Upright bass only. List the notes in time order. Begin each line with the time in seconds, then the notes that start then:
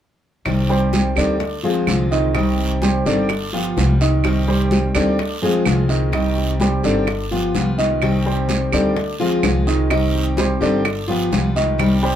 0.46 C2
1.16 D2
1.87 C2
3.06 G1
3.77 C2
4.95 D2
5.65 C2
6.84 G1
7.55 C2
8.73 D2
9.43 C2
10.61 G1
11.32 C2